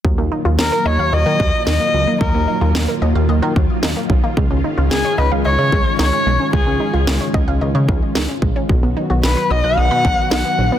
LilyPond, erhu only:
\new Staff \with { instrumentName = "Erhu" } { \time 4/4 \key ees \minor \tempo 4 = 111 r4 bes'8 des''8 ees''4 ees''4 | bes'4 r2. | r4 aes'8 ces''8 des''4 des''4 | aes'4 r2. |
r4 b'8 dis''8 fis''4 fis''4 | }